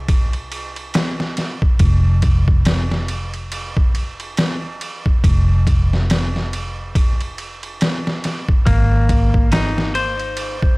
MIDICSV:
0, 0, Header, 1, 4, 480
1, 0, Start_track
1, 0, Tempo, 857143
1, 1013, Time_signature, 4, 2, 24, 8
1, 6036, End_track
2, 0, Start_track
2, 0, Title_t, "Clean electric guitar"
2, 0, Program_c, 0, 27
2, 4853, Note_on_c, 0, 58, 69
2, 5313, Note_off_c, 0, 58, 0
2, 5334, Note_on_c, 0, 63, 75
2, 5553, Note_off_c, 0, 63, 0
2, 5572, Note_on_c, 0, 72, 89
2, 6032, Note_off_c, 0, 72, 0
2, 6036, End_track
3, 0, Start_track
3, 0, Title_t, "Fingered electric bass"
3, 0, Program_c, 1, 33
3, 0, Note_on_c, 1, 36, 84
3, 753, Note_off_c, 1, 36, 0
3, 1009, Note_on_c, 1, 29, 90
3, 2671, Note_off_c, 1, 29, 0
3, 2935, Note_on_c, 1, 29, 83
3, 4595, Note_off_c, 1, 29, 0
3, 4854, Note_on_c, 1, 32, 81
3, 6036, Note_off_c, 1, 32, 0
3, 6036, End_track
4, 0, Start_track
4, 0, Title_t, "Drums"
4, 47, Note_on_c, 9, 51, 81
4, 48, Note_on_c, 9, 36, 105
4, 103, Note_off_c, 9, 51, 0
4, 104, Note_off_c, 9, 36, 0
4, 187, Note_on_c, 9, 51, 37
4, 243, Note_off_c, 9, 51, 0
4, 289, Note_on_c, 9, 51, 64
4, 345, Note_off_c, 9, 51, 0
4, 428, Note_on_c, 9, 51, 42
4, 484, Note_off_c, 9, 51, 0
4, 526, Note_on_c, 9, 51, 81
4, 533, Note_on_c, 9, 38, 111
4, 582, Note_off_c, 9, 51, 0
4, 589, Note_off_c, 9, 38, 0
4, 672, Note_on_c, 9, 38, 48
4, 728, Note_off_c, 9, 38, 0
4, 767, Note_on_c, 9, 51, 64
4, 773, Note_on_c, 9, 38, 42
4, 823, Note_off_c, 9, 51, 0
4, 829, Note_off_c, 9, 38, 0
4, 907, Note_on_c, 9, 36, 90
4, 963, Note_off_c, 9, 36, 0
4, 1004, Note_on_c, 9, 51, 81
4, 1007, Note_on_c, 9, 36, 95
4, 1060, Note_off_c, 9, 51, 0
4, 1063, Note_off_c, 9, 36, 0
4, 1244, Note_on_c, 9, 51, 65
4, 1247, Note_on_c, 9, 36, 94
4, 1300, Note_off_c, 9, 51, 0
4, 1303, Note_off_c, 9, 36, 0
4, 1387, Note_on_c, 9, 36, 89
4, 1443, Note_off_c, 9, 36, 0
4, 1486, Note_on_c, 9, 51, 87
4, 1493, Note_on_c, 9, 38, 112
4, 1542, Note_off_c, 9, 51, 0
4, 1549, Note_off_c, 9, 38, 0
4, 1632, Note_on_c, 9, 38, 51
4, 1688, Note_off_c, 9, 38, 0
4, 1727, Note_on_c, 9, 51, 67
4, 1783, Note_off_c, 9, 51, 0
4, 1868, Note_on_c, 9, 51, 42
4, 1924, Note_off_c, 9, 51, 0
4, 1969, Note_on_c, 9, 51, 80
4, 2025, Note_off_c, 9, 51, 0
4, 2109, Note_on_c, 9, 36, 88
4, 2165, Note_off_c, 9, 36, 0
4, 2211, Note_on_c, 9, 51, 60
4, 2267, Note_off_c, 9, 51, 0
4, 2351, Note_on_c, 9, 51, 41
4, 2407, Note_off_c, 9, 51, 0
4, 2449, Note_on_c, 9, 51, 90
4, 2456, Note_on_c, 9, 38, 118
4, 2505, Note_off_c, 9, 51, 0
4, 2512, Note_off_c, 9, 38, 0
4, 2694, Note_on_c, 9, 51, 69
4, 2750, Note_off_c, 9, 51, 0
4, 2832, Note_on_c, 9, 36, 86
4, 2888, Note_off_c, 9, 36, 0
4, 2933, Note_on_c, 9, 36, 103
4, 2935, Note_on_c, 9, 51, 84
4, 2989, Note_off_c, 9, 36, 0
4, 2991, Note_off_c, 9, 51, 0
4, 3174, Note_on_c, 9, 36, 90
4, 3176, Note_on_c, 9, 51, 64
4, 3230, Note_off_c, 9, 36, 0
4, 3232, Note_off_c, 9, 51, 0
4, 3323, Note_on_c, 9, 38, 38
4, 3379, Note_off_c, 9, 38, 0
4, 3416, Note_on_c, 9, 51, 83
4, 3422, Note_on_c, 9, 38, 106
4, 3472, Note_off_c, 9, 51, 0
4, 3478, Note_off_c, 9, 38, 0
4, 3562, Note_on_c, 9, 38, 34
4, 3618, Note_off_c, 9, 38, 0
4, 3658, Note_on_c, 9, 51, 66
4, 3714, Note_off_c, 9, 51, 0
4, 3894, Note_on_c, 9, 36, 110
4, 3895, Note_on_c, 9, 51, 77
4, 3950, Note_off_c, 9, 36, 0
4, 3951, Note_off_c, 9, 51, 0
4, 4035, Note_on_c, 9, 51, 42
4, 4091, Note_off_c, 9, 51, 0
4, 4134, Note_on_c, 9, 51, 60
4, 4190, Note_off_c, 9, 51, 0
4, 4273, Note_on_c, 9, 51, 42
4, 4329, Note_off_c, 9, 51, 0
4, 4373, Note_on_c, 9, 51, 79
4, 4380, Note_on_c, 9, 38, 110
4, 4429, Note_off_c, 9, 51, 0
4, 4436, Note_off_c, 9, 38, 0
4, 4520, Note_on_c, 9, 38, 51
4, 4576, Note_off_c, 9, 38, 0
4, 4614, Note_on_c, 9, 51, 65
4, 4620, Note_on_c, 9, 38, 45
4, 4670, Note_off_c, 9, 51, 0
4, 4676, Note_off_c, 9, 38, 0
4, 4752, Note_on_c, 9, 36, 91
4, 4808, Note_off_c, 9, 36, 0
4, 4852, Note_on_c, 9, 36, 99
4, 4853, Note_on_c, 9, 51, 84
4, 4908, Note_off_c, 9, 36, 0
4, 4909, Note_off_c, 9, 51, 0
4, 5092, Note_on_c, 9, 36, 90
4, 5092, Note_on_c, 9, 51, 66
4, 5148, Note_off_c, 9, 36, 0
4, 5148, Note_off_c, 9, 51, 0
4, 5231, Note_on_c, 9, 36, 88
4, 5287, Note_off_c, 9, 36, 0
4, 5330, Note_on_c, 9, 51, 84
4, 5336, Note_on_c, 9, 38, 109
4, 5386, Note_off_c, 9, 51, 0
4, 5392, Note_off_c, 9, 38, 0
4, 5477, Note_on_c, 9, 38, 52
4, 5533, Note_off_c, 9, 38, 0
4, 5572, Note_on_c, 9, 51, 64
4, 5628, Note_off_c, 9, 51, 0
4, 5709, Note_on_c, 9, 51, 43
4, 5765, Note_off_c, 9, 51, 0
4, 5806, Note_on_c, 9, 51, 82
4, 5862, Note_off_c, 9, 51, 0
4, 5950, Note_on_c, 9, 36, 87
4, 6006, Note_off_c, 9, 36, 0
4, 6036, End_track
0, 0, End_of_file